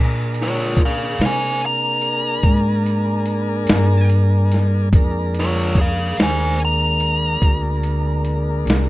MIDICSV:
0, 0, Header, 1, 5, 480
1, 0, Start_track
1, 0, Tempo, 831025
1, 2849, Time_signature, 12, 3, 24, 8
1, 5137, End_track
2, 0, Start_track
2, 0, Title_t, "Lead electric guitar"
2, 0, Program_c, 0, 29
2, 244, Note_on_c, 0, 65, 69
2, 248, Note_on_c, 0, 73, 75
2, 462, Note_off_c, 0, 73, 0
2, 467, Note_off_c, 0, 65, 0
2, 492, Note_on_c, 0, 68, 49
2, 493, Note_on_c, 0, 77, 56
2, 696, Note_off_c, 0, 68, 0
2, 704, Note_off_c, 0, 77, 0
2, 721, Note_on_c, 0, 72, 60
2, 726, Note_on_c, 0, 80, 65
2, 931, Note_off_c, 0, 72, 0
2, 940, Note_off_c, 0, 80, 0
2, 960, Note_on_c, 0, 82, 68
2, 2362, Note_off_c, 0, 82, 0
2, 3116, Note_on_c, 0, 65, 63
2, 3118, Note_on_c, 0, 73, 68
2, 3336, Note_off_c, 0, 73, 0
2, 3343, Note_off_c, 0, 65, 0
2, 3348, Note_on_c, 0, 68, 60
2, 3357, Note_on_c, 0, 77, 67
2, 3563, Note_off_c, 0, 68, 0
2, 3576, Note_off_c, 0, 77, 0
2, 3593, Note_on_c, 0, 72, 60
2, 3598, Note_on_c, 0, 80, 60
2, 3805, Note_off_c, 0, 72, 0
2, 3815, Note_off_c, 0, 80, 0
2, 3840, Note_on_c, 0, 82, 78
2, 5137, Note_off_c, 0, 82, 0
2, 5137, End_track
3, 0, Start_track
3, 0, Title_t, "Tonewheel organ"
3, 0, Program_c, 1, 16
3, 0, Note_on_c, 1, 58, 53
3, 0, Note_on_c, 1, 62, 55
3, 0, Note_on_c, 1, 68, 55
3, 0, Note_on_c, 1, 70, 55
3, 2823, Note_off_c, 1, 58, 0
3, 2823, Note_off_c, 1, 70, 0
3, 2825, Note_off_c, 1, 62, 0
3, 2827, Note_off_c, 1, 68, 0
3, 2857, Note_on_c, 1, 56, 60
3, 2859, Note_on_c, 1, 58, 59
3, 2859, Note_on_c, 1, 62, 59
3, 2862, Note_on_c, 1, 70, 59
3, 5137, Note_off_c, 1, 56, 0
3, 5137, Note_off_c, 1, 58, 0
3, 5137, Note_off_c, 1, 62, 0
3, 5137, Note_off_c, 1, 70, 0
3, 5137, End_track
4, 0, Start_track
4, 0, Title_t, "Upright bass"
4, 0, Program_c, 2, 32
4, 0, Note_on_c, 2, 46, 70
4, 664, Note_off_c, 2, 46, 0
4, 688, Note_on_c, 2, 48, 68
4, 1388, Note_off_c, 2, 48, 0
4, 1404, Note_on_c, 2, 44, 75
4, 2105, Note_off_c, 2, 44, 0
4, 2133, Note_on_c, 2, 43, 82
4, 2830, Note_off_c, 2, 43, 0
4, 2847, Note_on_c, 2, 41, 76
4, 3546, Note_off_c, 2, 41, 0
4, 3568, Note_on_c, 2, 39, 77
4, 4267, Note_off_c, 2, 39, 0
4, 4283, Note_on_c, 2, 38, 74
4, 4984, Note_off_c, 2, 38, 0
4, 5000, Note_on_c, 2, 36, 78
4, 5137, Note_off_c, 2, 36, 0
4, 5137, End_track
5, 0, Start_track
5, 0, Title_t, "Drums"
5, 199, Note_on_c, 9, 42, 46
5, 256, Note_off_c, 9, 42, 0
5, 442, Note_on_c, 9, 42, 42
5, 444, Note_on_c, 9, 36, 58
5, 500, Note_off_c, 9, 42, 0
5, 502, Note_off_c, 9, 36, 0
5, 686, Note_on_c, 9, 42, 53
5, 701, Note_on_c, 9, 38, 76
5, 744, Note_off_c, 9, 42, 0
5, 759, Note_off_c, 9, 38, 0
5, 926, Note_on_c, 9, 42, 49
5, 984, Note_off_c, 9, 42, 0
5, 1164, Note_on_c, 9, 42, 46
5, 1222, Note_off_c, 9, 42, 0
5, 1404, Note_on_c, 9, 42, 55
5, 1406, Note_on_c, 9, 36, 68
5, 1462, Note_off_c, 9, 42, 0
5, 1464, Note_off_c, 9, 36, 0
5, 1653, Note_on_c, 9, 42, 47
5, 1711, Note_off_c, 9, 42, 0
5, 1881, Note_on_c, 9, 42, 54
5, 1939, Note_off_c, 9, 42, 0
5, 2119, Note_on_c, 9, 42, 76
5, 2134, Note_on_c, 9, 38, 97
5, 2177, Note_off_c, 9, 42, 0
5, 2192, Note_off_c, 9, 38, 0
5, 2366, Note_on_c, 9, 42, 56
5, 2424, Note_off_c, 9, 42, 0
5, 2608, Note_on_c, 9, 42, 57
5, 2624, Note_on_c, 9, 38, 30
5, 2666, Note_off_c, 9, 42, 0
5, 2681, Note_off_c, 9, 38, 0
5, 2846, Note_on_c, 9, 36, 86
5, 2848, Note_on_c, 9, 42, 75
5, 2904, Note_off_c, 9, 36, 0
5, 2906, Note_off_c, 9, 42, 0
5, 3087, Note_on_c, 9, 42, 55
5, 3145, Note_off_c, 9, 42, 0
5, 3321, Note_on_c, 9, 42, 50
5, 3322, Note_on_c, 9, 36, 58
5, 3379, Note_off_c, 9, 42, 0
5, 3380, Note_off_c, 9, 36, 0
5, 3565, Note_on_c, 9, 42, 64
5, 3580, Note_on_c, 9, 38, 89
5, 3623, Note_off_c, 9, 42, 0
5, 3638, Note_off_c, 9, 38, 0
5, 3801, Note_on_c, 9, 42, 47
5, 3859, Note_off_c, 9, 42, 0
5, 4044, Note_on_c, 9, 42, 46
5, 4102, Note_off_c, 9, 42, 0
5, 4285, Note_on_c, 9, 36, 64
5, 4291, Note_on_c, 9, 42, 62
5, 4343, Note_off_c, 9, 36, 0
5, 4348, Note_off_c, 9, 42, 0
5, 4525, Note_on_c, 9, 42, 50
5, 4583, Note_off_c, 9, 42, 0
5, 4763, Note_on_c, 9, 42, 49
5, 4821, Note_off_c, 9, 42, 0
5, 5009, Note_on_c, 9, 42, 69
5, 5024, Note_on_c, 9, 38, 83
5, 5067, Note_off_c, 9, 42, 0
5, 5082, Note_off_c, 9, 38, 0
5, 5137, End_track
0, 0, End_of_file